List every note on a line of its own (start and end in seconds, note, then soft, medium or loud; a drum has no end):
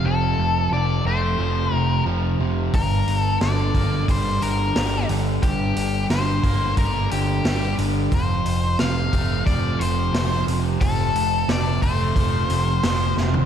0.00 0.72 C3 medium
0.00 1.06 F3 medium
0.04 0.33 F1 medium
0.04 1.73 F2 medium
0.04 0.69 A4 medium
0.38 0.67 F1 medium
0.71 1.00 F1 medium
0.71 1.72 C3 medium
0.71 1.06 D5 medium
1.05 1.34 F1 medium
1.05 2.74 A3 medium
1.05 1.75 C5 medium
1.39 1.68 F1 medium
1.39 2.05 F3 medium
1.72 2.01 F1 medium
1.72 2.39 C3 medium
1.72 2.03 A#4 medium
2.06 2.35 F1 medium
2.06 2.73 F3 medium
2.39 2.68 F1 medium
2.39 2.74 C3 medium
2.74 3.03 G1 medium
2.74 4.42 G2 medium
2.74 3.18 A#4 medium
2.74 kick loud
2.74 open hi-hat medium
3.08 3.36 G1 medium
3.08 open hi-hat soft
3.18 3.37 A4 medium
3.41 3.70 G1 medium
3.41 4.40 D3 medium
3.41 4.05 D5 medium
3.41 snare medium
3.41 open hi-hat soft
3.74 4.03 G1 medium
3.74 5.42 A#3 medium
3.74 kick medium
3.74 open hi-hat soft
4.08 4.37 G1 medium
4.08 4.74 G3 medium
4.08 4.41 C5 medium
4.08 kick medium
4.08 open hi-hat medium
4.41 4.71 G1 medium
4.41 5.08 D3 medium
4.41 5.05 A#4 medium
4.41 open hi-hat soft
4.75 5.05 G1 medium
4.75 6.43 G3 medium
4.75 snare loud
4.75 open hi-hat medium
5.09 5.38 G1 medium
5.09 6.10 D3 medium
5.09 open hi-hat soft
5.42 5.72 G1 medium
5.42 7.11 G2 medium
5.42 6.06 G4 medium
5.42 kick medium
5.42 open hi-hat medium
5.76 6.05 G1 medium
5.76 open hi-hat medium
6.10 6.39 G1 medium
6.10 7.11 D3 medium
6.10 6.74 C5 loud
6.10 snare medium
6.10 open hi-hat medium
6.43 6.72 G1 medium
6.43 8.12 A#3 medium
6.43 kick medium
6.43 open hi-hat soft
6.77 7.06 G1 medium
6.77 7.44 G3 medium
6.77 7.09 A#4 medium
6.77 kick medium
6.77 open hi-hat medium
7.11 7.40 G1 medium
7.11 7.77 D3 soft
7.11 7.74 G4 medium
7.11 open hi-hat soft
7.45 7.73 G1 medium
7.45 8.12 G3 medium
7.45 snare loud
7.45 open hi-hat medium
7.78 8.07 G1 medium
7.78 8.12 D3 medium
7.78 open hi-hat soft
8.11 8.41 F1 medium
8.11 9.80 F2 medium
8.11 8.76 C5 medium
8.11 kick loud
8.11 open hi-hat medium
8.46 8.75 F1 medium
8.46 open hi-hat soft
8.79 9.08 F1 medium
8.79 9.80 C3 medium
8.79 9.45 F5 loud
8.79 snare medium
8.79 open hi-hat soft
9.13 9.42 F1 medium
9.13 10.82 A3 medium
9.13 kick medium
9.13 open hi-hat soft
9.46 9.75 F1 medium
9.46 10.13 F3 medium
9.46 9.81 D5 medium
9.46 kick medium
9.46 open hi-hat soft
9.79 10.09 F1 medium
9.79 10.47 C3 medium
9.79 10.43 C5 medium
9.79 open hi-hat soft
10.13 10.42 F1 medium
10.13 11.83 F3 medium
10.13 snare loud
10.13 open hi-hat medium
10.47 10.76 F1 medium
10.47 11.48 C3 medium
10.47 open hi-hat soft
10.81 11.10 F1 medium
10.81 12.50 F2 medium
10.81 11.51 A4 medium
10.81 kick loud
10.81 open hi-hat medium
11.15 11.44 F1 medium
11.15 open hi-hat medium
11.49 11.78 F1 medium
11.49 12.49 C3 medium
11.49 11.82 D5 medium
11.49 snare medium
11.49 open hi-hat medium
11.82 12.11 F1 medium
11.82 13.46 A3 medium
11.82 13.13 C5 medium
11.82 kick medium
11.82 open hi-hat medium
12.16 12.45 F1 medium
12.16 12.83 F3 medium
12.16 kick medium
12.16 open hi-hat medium
12.50 12.79 F1 medium
12.50 13.18 C3 medium
12.50 open hi-hat soft
12.83 13.13 F1 medium
12.83 13.46 F3 medium
12.83 snare loud
12.83 open hi-hat medium
13.17 13.46 F1 medium
13.17 13.46 C3 medium
13.17 snare medium
13.34 floor tom medium